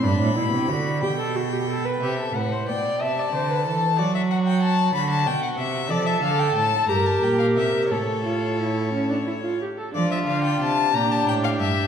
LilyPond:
<<
  \new Staff \with { instrumentName = "Violin" } { \time 6/8 \key c \major \tempo 4. = 61 b''4. g''4. | e''8 fis''8 g''8 a''4. | d''16 e''16 fis''16 g''16 a''8 b''16 a''16 g''16 fis''16 e''8 | \key d \minor d''16 e''16 f''16 g''16 a''8 bes''16 a''16 g''16 f''16 e''8 |
cis''2~ cis''8 r8 | d''16 e''16 f''16 g''16 a''8 bes''16 a''16 g''16 f''16 e''8 | }
  \new Staff \with { instrumentName = "Violin" } { \time 6/8 \key c \major r2. | g'16 a'16 b'16 c''16 d''8 e''16 d''16 c''16 b'16 a'8 | fis'4. fis'4. | \key d \minor a'4. bes'4. |
a'2~ a'8 r8 | f'4. g'4. | }
  \new Staff \with { instrumentName = "Viola" } { \time 6/8 \key c \major d'8 e'8 fis'8 g'16 a'16 fis'16 g'16 a'16 b'16 | r2. | r2. | \key d \minor a'4. g'4. |
a'8 f'8 e'8 cis'16 d'16 e'16 f'16 g'16 a'16 | d'4. d'4. | }
  \new Staff \with { instrumentName = "Cello" } { \clef bass \time 6/8 \key c \major g,16 a,16 b,16 c16 d8 b,4. | c8 a,8 b,8 c8 d8 e8 | fis4. d8 b,8 c8 | \key d \minor f8 d8 a,8 g,8 bes,8 c8 |
a,2~ a,8 r8 | f8 d8 c8 bes,8 a,8 g,8 | }
>>